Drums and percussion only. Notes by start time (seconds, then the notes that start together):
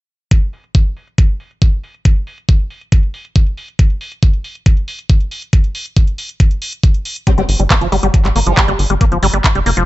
0.31 kick
0.42 closed hi-hat
0.53 open hi-hat
0.64 closed hi-hat
0.75 kick
0.86 closed hi-hat
0.97 open hi-hat
1.07 closed hi-hat
1.18 kick
1.40 open hi-hat
1.51 closed hi-hat
1.62 kick
1.73 closed hi-hat
1.84 open hi-hat
1.94 closed hi-hat
2.05 kick
2.16 closed hi-hat
2.27 open hi-hat
2.38 closed hi-hat
2.49 kick, closed hi-hat
2.60 closed hi-hat
2.70 open hi-hat
2.81 closed hi-hat
2.92 kick
3.03 closed hi-hat
3.14 open hi-hat
3.25 closed hi-hat
3.36 kick, closed hi-hat
3.47 closed hi-hat
3.57 open hi-hat
3.68 closed hi-hat
3.79 kick, closed hi-hat
3.90 closed hi-hat
4.01 open hi-hat
4.12 closed hi-hat
4.23 kick, closed hi-hat
4.33 closed hi-hat
4.44 open hi-hat
4.55 closed hi-hat
4.66 kick, closed hi-hat
4.77 closed hi-hat
4.88 open hi-hat
4.99 closed hi-hat
5.10 kick, closed hi-hat
5.20 closed hi-hat
5.31 open hi-hat
5.42 closed hi-hat
5.53 kick, closed hi-hat
5.64 closed hi-hat
5.75 open hi-hat
5.86 closed hi-hat
5.97 kick, closed hi-hat
6.07 closed hi-hat
6.18 open hi-hat
6.29 closed hi-hat
6.40 kick, closed hi-hat
6.51 closed hi-hat
6.62 open hi-hat
6.73 closed hi-hat
6.83 kick, closed hi-hat
6.94 closed hi-hat
7.05 open hi-hat
7.16 closed hi-hat
7.27 kick, closed hi-hat
7.38 closed hi-hat
7.49 open hi-hat
7.60 closed hi-hat
7.70 kick, clap, closed hi-hat
7.81 closed hi-hat
7.92 open hi-hat
8.03 closed hi-hat
8.14 kick, closed hi-hat
8.25 clap, closed hi-hat
8.36 open hi-hat
8.47 closed hi-hat
8.57 kick, clap, closed hi-hat
8.68 closed hi-hat
8.79 open hi-hat
8.90 closed hi-hat
9.01 kick, closed hi-hat
9.12 closed hi-hat
9.23 open hi-hat
9.33 closed hi-hat
9.44 kick, clap, closed hi-hat
9.55 closed hi-hat
9.66 open hi-hat
9.77 closed hi-hat